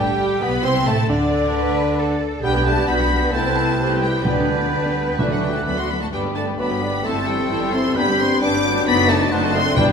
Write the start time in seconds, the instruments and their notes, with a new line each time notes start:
Already playing: double bass section G1, bassoon G3, french horn section G3, viola section G3, cello section D4, clarinet G4, violin section G4 G5, cor anglais G4, flute G5
0.19 cello section G4
0.41 double bass section B1, french horn section B3, viola section B3, bassoon B3, clarinet B4, violin section B4 B5, cor anglais B4, flute B5
0.64 double bass section C2, french horn section C4, viola section C4, bassoon C4, cello section E4, clarinet C5, cor anglais C5, violin section C5 C6, flute C6
0.87 double bass section A1, viola section A3, french horn section A3, bassoon A3, clarinet A4, cor anglais A4, violin section A4 A5, flute A5
1.09 double bass section D2, french horn section D3, viola section D3, bassoon D3, clarinet D4, cor anglais D4, cello section D4, violin section D4 D5, flute D5
1.54 cello section B4
1.99 cello section A4
2.43 double bass section B1, french horn section G3, viola section G3 D4, bassoon B3, clarinet D4, cello section G4, cor anglais B4, violin section B4 G5, flute G6
2.54 viola section B3, violin section G4 D5
2.65 viola section G3 D4, french horn section A3, violin section B4 A5
2.76 viola section B3, violin section G4 D5
2.87 double bass section B1, viola section G3 D4, bassoon B3, french horn section B3, clarinet D4, cello section F#4, violin section B4 B5, cor anglais B4, flute G6
2.98 viola section B3, violin section G4 D5
3.10 viola section G3 D4, violin section B4
3.22 viola section B3, violin section G4 D5
3.32 double bass section C2, french horn section A3, bassoon C4, viola section C4 E4, cello section E4, clarinet E4, cor anglais B4, violin section B4 C5 A5, flute G6
3.45 viola section B3 C4, violin section G4 C5
3.56 viola section C4 E4, violin section B4 C5
3.68 viola section B3 C4, violin section G4 C5
3.77 double bass section C2, viola section C4 E4, cello section G4, violin section B4 C5
3.91 viola section B3 C4, violin section G4 C5
4.01 french horn section G3, viola section C4 E4, violin section B4 C5 G5
4.14 viola section B3 C4, violin section G4 C5
4.24 double bass section D2, french horn section D3, timpani D3, viola section G3 D4, bassoon B3, clarinet D4, cello section B4, cor anglais B4, violin section B4 D5, flute G6
4.37 viola section B3, violin section G4 D5
4.49 viola section G3 D4, violin section B4
4.61 viola section B3, violin section G4 D5
4.72 double bass section D2, viola section G3 D4, violin section B4
4.84 viola section B3, violin section G4 D5
4.95 viola section G3 D4, violin section B4
5.07 viola section B3, violin section G4 D5
5.18 double bass section D2, timpani D3, french horn section E3, viola section F#3 D4, bassoon A3, clarinet D4, violin section A4 D5 E5, cor anglais D5, flute F#6
5.30 french horn section F#3, viola section A3 F#4, violin section F#4 F#5
5.42 viola section F#3 D4, french horn section G3, violin section A4 D5 G5
5.53 viola section A3 F#4, french horn section A3, violin section F#4 F#5 A5
5.65 double bass section D2, viola section F#3 D4, french horn section B3, violin section A4 D5 B5
5.76 viola section A3 F#4, french horn section C4, violin section F#4 F#5 C6
5.89 viola section F#3 D4, french horn section B3, violin section A4 D5 B5
6.01 viola section A3 F#4, french horn section A3, violin section F#4 F#5 A5
6.11 double bass section G1, french horn section G3, bassoon G3, viola section B3 D4, clarinet D4, violin section B4 D5 G5, cor anglais D5, flute B5
6.23 viola section G3 B3, violin section G4 B4
6.35 french horn section A3, viola section B3 D4, violin section B4 D5 A5
6.47 viola section G3 B3, violin section G4 B4
6.58 double bass section G1, bassoon F#3, viola section B3 D4, french horn section B3, violin section B4 D5 B5, cor anglais B4, flute D6
6.70 viola section G3 B3, violin section G4 B4
6.81 bassoon G3, viola section B3 D4, violin section B4 D5
6.93 viola section G3 B3, violin section G4 B4
7.04 double bass section G1, viola section E3 E4, french horn section A3, bassoon A3, clarinet C4, violin section E4 C5 A5, cello section A4, cor anglais C5, flute E6
7.15 viola section G3 C4, violin section G4 E5
7.27 viola section E3 E4, french horn section G3, violin section E4 C5 G5
7.38 viola section G3 C4, violin section G4 E5
7.49 double bass section G1, viola section E3 E4, violin section E4 C5, clarinet E4
7.60 viola section G3 C4, violin section G4 E5
7.72 viola section E3 E4, clarinet C4, french horn section C4, violin section E4 C5 C6
7.84 viola section G3 C4, violin section G4 E5
7.95 double bass section G1, bassoon G3, viola section B3 D4, french horn section B3, clarinet D4, cello section G4, violin section B4 B5, cor anglais B4, flute G6
8.07 viola section G3 B3, violin section G4 D5
8.18 viola section B3 D4, french horn section C4, violin section B4 C6
8.29 viola section G3 B3, violin section G4 D5
8.41 double bass section G1, bassoon G3, viola section B3 D4, clarinet D4, cello section D4, french horn section D4, violin section B4 D6, cor anglais B4
8.52 viola section G3 B3, violin section G4 D5
8.64 bassoon F#3, viola section B3 D4, violin section B4
8.75 viola section G3 B3, violin section G4 D5
8.86 double bass section F#1, viola section A3 D#4, french horn section B3, cello section D#4, violin section F#4 C5 B5, cor anglais D5, flute A6
8.98 viola section C4 F#4, violin section A4 D#5
9.09 french horn section A3, viola section A3 D#4, violin section F#4 C5 A5
9.20 viola section C4 F#4, violin section A4 D#5
9.31 double bass section F#1, viola section A3 D#4, bassoon B3, cello section D4, clarinet D#4, violin section F#4 C5, cor anglais C5, flute F#6
9.42 viola section C4 F#4, violin section A4 D#5
9.54 viola section A3 D#4, bassoon A3, french horn section C4, violin section F#4 C5 C6
9.65 viola section C4 F#4, violin section A4 D#5
9.76 double bass section G1, timpani G2, viola section G3 D4, french horn section G3, bassoon G3, clarinet E4, cor anglais B4, violin section B4 D5 G5, flute G6
9.87 viola section B3, violin section G4 B4